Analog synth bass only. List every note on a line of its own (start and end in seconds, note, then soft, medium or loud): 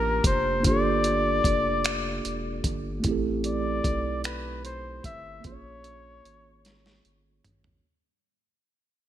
0.00 0.21 A1 medium
0.25 0.67 F1 medium
0.65 1.41 G1 medium
1.45 2.21 F1 medium
2.26 2.61 E1 medium
2.65 3.01 G1 medium
3.05 3.81 A1 loud
3.85 5.01 B1 medium
5.05 5.40 G1 medium
5.45 6.21 A#1 loud
6.26 7.01 G#1 medium
7.06 7.41 G1 medium
7.46 7.81 G#1 medium